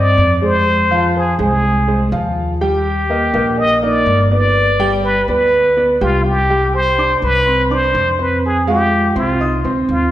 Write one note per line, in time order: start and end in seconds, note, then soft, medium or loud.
0.00 0.13 G2 medium
0.00 0.33 C4 medium
0.00 0.33 C5 medium
0.00 0.34 D5 medium
0.00 0.43 D5 loud
0.17 1.33 F2 loud
0.42 0.82 G#3 medium
0.42 0.82 G#4 medium
0.42 0.82 C5 medium
0.42 1.18 C5 loud
0.91 1.31 F3 loud
0.91 1.31 F4 loud
0.91 1.31 F5 loud
1.17 1.40 G#4 medium
1.39 2.08 C2 loud
1.39 1.79 G#3 medium
1.39 1.79 G#4 medium
1.39 2.09 G#4 medium
1.39 1.79 C5 medium
1.88 2.08 G#3 medium
1.88 2.08 G#4 medium
1.88 2.08 C5 medium
2.12 3.27 D#2 loud
2.12 2.52 F3 medium
2.12 2.52 F4 medium
2.12 2.52 F5 medium
2.61 3.01 G3 medium
2.61 3.01 G4 medium
2.61 3.60 G4 loud
2.61 3.01 G5 medium
3.10 3.29 A#3 medium
3.10 3.30 A#4 medium
3.10 3.30 D#5 medium
3.34 4.02 A#1 loud
3.34 3.74 A#3 medium
3.34 3.74 A#4 medium
3.34 3.74 D#5 medium
3.59 3.85 D#5 loud
3.82 4.22 A#3 medium
3.82 4.22 D#4 medium
3.82 4.22 A#4 medium
3.82 4.31 D5 loud
4.06 5.21 G1 loud
4.31 4.71 B3 medium
4.31 4.71 B4 medium
4.31 4.71 D5 medium
4.31 5.00 D5 loud
4.79 5.19 G3 loud
4.79 5.19 G4 loud
4.79 5.19 G5 loud
5.04 5.26 B4 loud
5.28 5.97 D2 medium
5.28 5.68 B3 medium
5.28 5.68 B4 medium
5.28 5.97 B4 loud
5.28 5.68 D5 medium
5.77 5.96 B3 medium
5.77 5.97 B4 medium
5.77 5.97 D5 medium
6.01 7.16 C2 loud
6.01 6.40 G3 medium
6.01 6.28 F4 loud
6.01 6.41 G4 medium
6.01 6.41 G5 medium
6.27 6.76 G4 loud
6.49 6.89 G3 medium
6.49 6.90 G4 medium
6.49 6.90 G5 medium
6.75 7.23 C5 loud
6.98 7.38 D4 medium
6.98 7.38 D5 medium
6.98 7.38 D6 medium
7.22 7.91 C2 medium
7.22 7.74 B4 loud
7.46 7.66 C4 medium
7.46 7.66 C5 medium
7.46 7.67 C6 medium
7.70 8.10 D4 medium
7.70 8.20 C5 loud
7.70 8.10 D5 medium
7.70 8.11 D6 medium
7.95 9.10 F2 loud
8.19 8.59 C4 medium
8.19 8.43 B4 medium
8.19 8.59 C5 medium
8.19 8.59 C6 medium
8.46 8.67 G#4 medium
8.67 9.07 G#3 loud
8.67 9.07 F4 loud
8.67 9.14 G4 loud
8.67 9.07 F5 loud
9.16 9.61 C2 loud
9.16 9.36 C4 medium
9.16 9.62 F4 medium
9.16 9.36 C5 medium
9.16 9.36 C6 medium
9.40 9.60 D#4 medium
9.40 9.60 D#5 medium
9.40 9.61 D#6 medium
9.64 9.87 D2 medium
9.64 10.04 C4 medium
9.64 10.05 C5 medium
9.64 10.05 C6 medium
9.89 10.11 D#2 loud
9.89 10.11 F4 medium